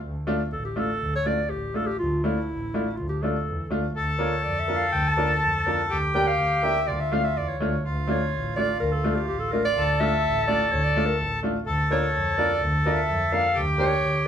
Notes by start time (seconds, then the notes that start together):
0.02 D2
0.27 A3 D4 F4
0.52 A1 A4
0.65 G4
0.76 A3 D4 F4 A4
1.02 D2
1.15 C#5
1.25 A3 D4 F4 D5
1.50 A1 G4
1.74 A3 D4 F4 A4
1.86 G4
1.99 D2 F4
2.24 A3 D4 E4 F4
2.50 A1
2.74 A3 D4 F4
2.97 D2 F4
3.09 G4
3.23 A3 D4 F4 A4
3.48 E2
3.71 D2 A3 D4 F4
3.96 D2 A4
4.19 A#3 D4 F4 C#5
4.43 F2 D5
4.59 E5
4.68 A#3 D4 F4
4.76 F5
4.92 D2 G5
5.08 A5
5.17 A#3 D4 F4
5.42 F2
5.66 A#3 D4 F4
5.90 D2 G4
6.15 A#3 D4 G4 G5
6.27 F5
6.38 D2
6.63 A#3 D4 G4 E5
6.87 D2 F4 D5
7.00 E5
7.12 A3 D4 F4 F5
7.25 E5
7.36 E2 D5
7.49 C#5
7.60 D2 A3 D4 F4
7.85 D2 F4
8.07 A3 D4 F4 C#5
8.34 A1
8.56 A3 D4 F4 D5
8.80 D2 A#4
8.92 A4
9.04 A3 D4 F4
9.15 G4
9.28 A1 G4
9.40 A4
9.52 A3 D4 F4 A#4
9.65 D5
9.77 D2 A4
10.00 A3 D4 F4 E5
10.24 A1
10.47 A3 D4 F4 D5
10.72 D2 C#5
10.84 D5
10.96 A3 D4 F4
11.06 A#4
11.19 A1 A4
11.43 A3 D4 F4
11.66 D2 A4
11.91 A#3 D4 F4 C#5
12.14 F2
12.38 A#3 D4 F4 D5
12.62 D2
12.86 A#3 D4 F4 E5
13.09 F2
13.32 A#3 D4 F4 F5
13.54 D2 G4
13.78 A#3 D4 G4 C#5
14.03 D2